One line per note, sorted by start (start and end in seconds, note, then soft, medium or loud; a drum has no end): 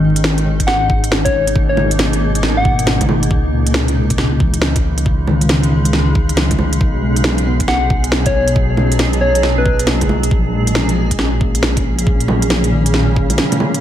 0.00 3.29 G#1 medium
0.00 3.30 B2 medium
0.00 0.40 D#3 medium
0.00 4.73 A#3 medium
0.00 1.23 C#4 medium
0.00 10.93 D#4 medium
0.00 3.31 G#4 medium
0.16 closed hi-hat medium
0.24 snare loud
0.38 closed hi-hat soft
0.46 1.06 D#3 medium
0.60 kick medium
0.60 closed hi-hat medium
0.67 1.03 F#5 medium
0.67 snare medium
0.90 kick loud
1.04 closed hi-hat medium
1.12 snare loud
1.25 1.48 C#5 loud
1.25 kick loud
1.25 closed hi-hat soft
1.48 closed hi-hat medium
1.56 2.16 D#3 medium
1.56 kick loud
1.69 1.92 C#5 medium
1.77 low bongo medium
1.91 closed hi-hat medium
1.99 snare loud
2.13 closed hi-hat soft
2.35 closed hi-hat medium
2.43 snare medium
2.57 3.01 F#5 loud
2.64 3.25 B2 medium
2.64 kick loud
2.79 closed hi-hat medium
2.87 snare loud
3.01 kick medium
3.01 closed hi-hat soft
3.01 low bongo medium
3.09 low bongo medium
3.23 closed hi-hat medium
3.31 6.80 C#2 medium
3.31 6.81 C#3 loud
3.31 kick loud
3.53 4.13 A#2 medium
3.53 6.81 G#3 medium
3.67 closed hi-hat medium
3.71 13.80 G#4 medium
3.71 snare loud
3.88 closed hi-hat soft
4.10 kick medium
4.10 closed hi-hat medium
4.18 snare medium
4.40 5.01 E3 medium
4.40 kick loud
4.54 closed hi-hat medium
4.62 snare loud
4.76 kick loud
4.76 closed hi-hat soft
4.98 closed hi-hat medium
5.06 kick loud
5.27 5.88 D#3 medium
5.27 low bongo medium
5.41 closed hi-hat medium
5.49 snare loud
5.63 closed hi-hat soft
5.85 closed hi-hat medium
5.93 snare medium
6.15 kick loud
6.29 closed hi-hat medium
6.37 6.97 F#3 medium
6.37 snare loud
6.51 kick medium
6.51 closed hi-hat soft
6.51 low bongo medium
6.59 low bongo medium
6.73 closed hi-hat medium
6.81 10.30 B1 medium
6.81 10.31 B2 loud
6.81 kick loud
7.02 7.63 G#3 medium
7.16 closed hi-hat medium
7.24 10.32 F#3 medium
7.24 snare loud
7.38 closed hi-hat soft
7.47 8.07 B3 medium
7.60 kick medium
7.60 closed hi-hat medium
7.68 8.04 F#5 medium
7.68 snare medium
7.90 kick loud
8.04 closed hi-hat medium
8.12 snare loud
8.26 8.49 C#5 medium
8.26 kick loud
8.26 closed hi-hat soft
8.48 closed hi-hat medium
8.56 kick loud
8.77 9.38 C#4 medium
8.77 low bongo medium
8.92 closed hi-hat medium
8.99 snare loud
9.13 closed hi-hat soft
9.21 9.55 C#5 loud
9.35 closed hi-hat medium
9.43 snare medium
9.58 9.88 B4 loud
9.66 kick loud
9.79 closed hi-hat medium
9.87 10.48 A#3 medium
9.87 snare loud
10.01 kick medium
10.01 closed hi-hat soft
10.01 low bongo medium
10.09 low bongo medium
10.23 closed hi-hat medium
10.31 13.38 A#1 medium
10.31 13.80 A#2 medium
10.31 kick loud
10.48 13.80 C#3 medium
10.53 11.14 G#3 medium
10.66 13.80 C#4 medium
10.66 closed hi-hat medium
10.75 snare loud
10.89 closed hi-hat soft
11.11 kick medium
11.11 closed hi-hat medium
11.19 11.79 C#4 medium
11.19 snare medium
11.41 12.01 A#3 medium
11.41 kick loud
11.55 closed hi-hat medium
11.63 snare loud
11.77 kick loud
11.77 closed hi-hat soft
11.99 closed hi-hat medium
12.07 kick loud
12.21 closed hi-hat soft
12.28 12.89 F#3 medium
12.28 low bongo medium
12.42 closed hi-hat medium
12.50 snare loud
12.64 closed hi-hat soft
12.72 13.33 D#3 medium
12.86 closed hi-hat medium
12.94 snare medium
13.16 kick loud
13.30 closed hi-hat medium
13.30 low bongo soft
13.38 snare loud
13.52 closed hi-hat soft
13.52 low bongo medium
13.60 13.80 A#3 medium
13.60 low bongo medium
13.74 closed hi-hat medium